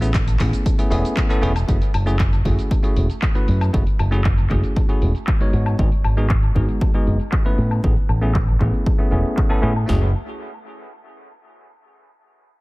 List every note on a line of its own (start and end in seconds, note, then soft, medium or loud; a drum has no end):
0.00 0.36 A1 medium
0.00 0.10 A3 medium
0.00 0.11 B3 medium
0.00 0.11 C#4 medium
0.00 0.11 E4 medium
0.00 0.11 G#4 medium
0.00 closed hi-hat soft
0.00 cabasa medium
0.14 kick loud
0.14 clap loud
0.14 closed hi-hat medium
0.14 cabasa medium
0.28 closed hi-hat soft
0.28 cabasa soft
0.40 0.51 A1 medium
0.40 0.75 A3 medium
0.40 0.76 B3 medium
0.40 0.76 C#4 medium
0.40 0.76 E4 medium
0.40 0.76 G#4 medium
0.40 kick medium
0.40 clap medium
0.40 open hi-hat loud
0.53 closed hi-hat soft
0.53 cabasa medium
0.66 kick loud
0.66 closed hi-hat medium
0.66 cabasa medium
0.78 0.89 A3 medium
0.78 0.89 B3 medium
0.78 0.89 C#4 medium
0.78 0.89 E4 medium
0.78 0.90 G#4 medium
0.78 closed hi-hat soft
0.78 cabasa soft
0.90 1.02 E1 medium
0.90 1.26 A3 medium
0.90 1.27 B3 medium
0.90 1.27 C#4 medium
0.90 1.27 E4 medium
0.90 1.27 G#4 medium
0.90 open hi-hat loud
1.05 closed hi-hat soft
1.05 cabasa medium
1.17 kick loud
1.17 clap loud
1.17 closed hi-hat medium
1.17 cabasa medium
1.29 1.41 A3 loud
1.29 1.41 B3 medium
1.29 1.41 C#4 medium
1.29 1.41 E4 medium
1.29 1.41 A4 loud
1.29 closed hi-hat soft
1.29 cabasa soft
1.42 1.63 E1 medium
1.42 1.52 A3 medium
1.42 1.52 B3 medium
1.42 1.52 C#4 medium
1.42 1.52 E4 medium
1.42 1.52 G#4 loud
1.42 open hi-hat loud
1.56 closed hi-hat soft
1.56 cabasa medium
1.56 high woodblock medium
1.68 1.79 F#1 loud
1.68 1.77 A3 medium
1.68 1.77 C#4 medium
1.68 1.78 E4 medium
1.68 1.78 F#4 medium
1.68 1.78 G#4 medium
1.68 kick loud
1.68 closed hi-hat medium
1.68 cabasa medium
1.82 closed hi-hat soft
1.82 cabasa soft
1.94 2.41 F#1 medium
1.94 open hi-hat loud
1.94 high woodblock medium
2.06 2.16 A3 medium
2.06 2.16 C#4 medium
2.06 2.16 E4 medium
2.06 2.16 F#4 medium
2.06 2.16 G#4 loud
2.06 closed hi-hat soft
2.06 cabasa medium
2.19 kick loud
2.19 clap loud
2.19 closed hi-hat medium
2.19 cabasa medium
2.33 closed hi-hat soft
2.33 cabasa soft
2.45 2.56 F#1 medium
2.45 2.81 A3 medium
2.45 2.81 C#4 medium
2.45 2.81 E4 medium
2.45 2.81 F#4 medium
2.45 2.81 G#4 medium
2.45 kick medium
2.45 open hi-hat loud
2.59 closed hi-hat soft
2.59 cabasa medium
2.71 kick loud
2.71 closed hi-hat medium
2.71 cabasa medium
2.83 3.06 A3 medium
2.83 3.06 C#4 medium
2.83 3.06 E4 medium
2.83 3.06 F#4 medium
2.83 3.07 G#4 medium
2.83 closed hi-hat soft
2.83 cabasa soft
2.96 3.07 E1 medium
2.96 open hi-hat loud
3.10 closed hi-hat soft
3.10 cabasa medium
3.22 kick loud
3.22 clap loud
3.22 closed hi-hat medium
3.22 cabasa medium
3.35 3.70 A3 medium
3.35 3.70 C#4 medium
3.35 3.71 E4 medium
3.35 3.71 F#4 medium
3.35 3.71 B4 medium
3.35 closed hi-hat soft
3.35 cabasa soft
3.48 3.69 F#2 medium
3.48 open hi-hat loud
3.61 closed hi-hat soft
3.61 cabasa medium
3.61 high woodblock medium
3.73 3.84 F#1 loud
3.73 3.83 A3 medium
3.73 3.83 C#4 medium
3.73 3.83 E4 medium
3.73 3.83 F#4 medium
3.73 3.83 G#4 medium
3.73 kick loud
3.73 closed hi-hat medium
3.73 cabasa medium
3.87 closed hi-hat soft
3.87 cabasa soft
3.99 4.47 F#1 medium
3.99 open hi-hat loud
3.99 high woodblock medium
4.11 4.21 A3 medium
4.11 4.21 C#4 medium
4.11 4.21 E4 medium
4.11 4.21 F#4 medium
4.11 4.21 G#4 loud
4.11 closed hi-hat soft
4.11 cabasa medium
4.24 kick loud
4.24 clap loud
4.24 closed hi-hat medium
4.24 cabasa medium
4.38 closed hi-hat soft
4.38 cabasa soft
4.50 4.61 F#1 medium
4.50 4.86 A3 medium
4.50 4.86 C#4 medium
4.50 4.86 E4 medium
4.50 4.86 F#4 medium
4.50 4.86 G#4 medium
4.50 kick medium
4.50 clap medium
4.50 open hi-hat loud
4.63 closed hi-hat soft
4.63 cabasa medium
4.76 kick loud
4.76 closed hi-hat medium
4.76 cabasa medium
4.89 5.11 A3 medium
4.89 5.12 C#4 medium
4.89 5.12 E4 medium
4.89 5.12 F#4 medium
4.89 5.12 G#4 medium
4.89 closed hi-hat soft
4.89 cabasa soft
5.02 5.12 E1 medium
5.02 open hi-hat loud
5.15 closed hi-hat soft
5.15 cabasa medium
5.27 kick loud
5.27 clap loud
5.27 closed hi-hat medium
5.27 cabasa medium
5.40 5.76 G#3 medium
5.40 5.76 B3 medium
5.40 5.76 D#4 medium
5.40 5.76 F#4 medium
5.40 5.76 C#5 medium
5.40 closed hi-hat soft
5.40 cabasa soft
5.53 5.74 G#2 medium
5.53 open hi-hat loud
5.66 closed hi-hat soft
5.66 cabasa medium
5.66 high woodblock medium
5.79 5.89 G#1 loud
5.79 5.88 G#3 medium
5.79 5.88 B3 medium
5.79 5.88 D#4 medium
5.79 5.88 F#4 medium
5.79 5.89 G#4 medium
5.79 kick loud
5.79 closed hi-hat medium
5.79 cabasa medium
5.92 closed hi-hat soft
5.92 cabasa soft
6.04 6.52 G#1 medium
6.04 open hi-hat loud
6.04 high woodblock medium
6.17 6.26 G#3 medium
6.17 6.26 B3 medium
6.17 6.27 D#4 medium
6.17 6.27 F#4 medium
6.17 6.27 G#4 medium
6.17 closed hi-hat soft
6.17 cabasa medium
6.30 kick loud
6.30 clap loud
6.30 closed hi-hat medium
6.30 cabasa medium
6.43 closed hi-hat soft
6.43 cabasa soft
6.55 6.66 G#1 medium
6.55 6.91 G#3 medium
6.55 6.91 B3 medium
6.55 6.91 D#4 medium
6.55 6.91 F#4 medium
6.55 6.91 G#4 medium
6.55 kick medium
6.55 open hi-hat medium
6.69 closed hi-hat soft
6.69 cabasa medium
6.81 kick loud
6.81 closed hi-hat medium
6.81 cabasa medium
6.94 7.17 G#3 medium
6.94 7.17 B3 medium
6.94 7.17 D#4 medium
6.94 7.17 F#4 medium
6.94 7.17 G#4 medium
6.94 closed hi-hat soft
6.94 cabasa soft
7.07 7.17 F#1 medium
7.07 open hi-hat medium
7.20 closed hi-hat soft
7.20 cabasa medium
7.32 kick loud
7.32 clap loud
7.32 closed hi-hat medium
7.32 cabasa medium
7.45 7.81 A3 medium
7.45 7.81 B3 medium
7.45 7.81 C#4 medium
7.45 7.81 E4 medium
7.45 7.81 B4 medium
7.45 closed hi-hat soft
7.45 cabasa soft
7.58 7.79 A2 medium
7.58 open hi-hat medium
7.71 closed hi-hat soft
7.71 cabasa medium
7.71 high woodblock medium
7.84 7.94 A1 loud
7.84 7.93 A3 medium
7.84 7.93 B3 medium
7.84 7.93 C#4 medium
7.84 7.93 E4 medium
7.84 7.94 G#4 medium
7.84 kick loud
7.84 closed hi-hat medium
7.84 cabasa medium
7.96 closed hi-hat soft
7.96 cabasa soft
8.09 8.56 A1 medium
8.09 open hi-hat loud
8.09 high woodblock medium
8.21 8.31 A3 medium
8.21 8.31 B3 medium
8.21 8.31 C#4 medium
8.21 8.32 E4 medium
8.21 8.32 G#4 medium
8.21 closed hi-hat soft
8.21 cabasa medium
8.35 kick loud
8.35 clap loud
8.35 closed hi-hat medium
8.48 closed hi-hat soft
8.48 cabasa soft
8.60 8.71 A1 medium
8.60 8.96 A3 medium
8.60 8.96 B3 medium
8.60 8.96 C#4 medium
8.60 8.96 E4 medium
8.60 8.96 G#4 medium
8.60 kick medium
8.60 clap medium
8.60 open hi-hat loud
8.74 closed hi-hat soft
8.74 cabasa medium
8.86 kick loud
8.86 closed hi-hat medium
8.86 cabasa medium
8.98 9.09 A3 medium
8.98 9.09 B3 medium
8.98 9.09 C#4 medium
8.98 9.09 E4 medium
8.98 9.10 G#4 medium
8.98 closed hi-hat soft
8.98 cabasa soft
9.11 9.22 E1 medium
9.11 9.47 A3 medium
9.11 9.47 B3 medium
9.11 9.47 C#4 medium
9.11 9.48 E4 medium
9.11 9.48 G#4 medium
9.11 open hi-hat medium
9.25 closed hi-hat soft
9.25 cabasa medium
9.37 kick loud
9.37 clap loud
9.37 cabasa medium
9.49 9.61 A3 medium
9.49 9.61 B3 medium
9.49 9.61 C#4 medium
9.49 9.61 E4 medium
9.49 9.61 A4 loud
9.49 closed hi-hat soft
9.49 cabasa soft
9.49 high woodblock medium
9.62 9.84 A2 medium
9.62 9.72 A3 medium
9.62 9.72 B3 medium
9.62 9.72 C#4 medium
9.62 9.72 E4 medium
9.62 9.72 G#4 loud
9.62 open hi-hat loud
9.76 closed hi-hat soft
9.76 cabasa medium
9.76 high woodblock medium
9.86 10.13 F#1 loud
9.86 10.07 A3 medium
9.86 10.07 C#4 medium
9.86 10.08 E4 medium
9.86 10.08 F#4 medium
9.86 10.08 G#4 medium
9.86 snare loud
9.86 floor tom loud